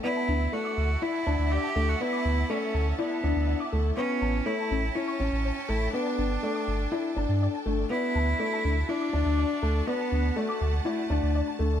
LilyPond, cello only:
\new Staff \with { instrumentName = "Cello" } { \time 4/4 \key d \major \tempo 4 = 122 e'4 fis'4 e'4 g'8. fis'16 | e'4 cis'4 b4. r8 | cis'4 e'4 cis'4. e'8 | d'2. r4 |
e'2 d'2 | b4 a4 a4. r8 | }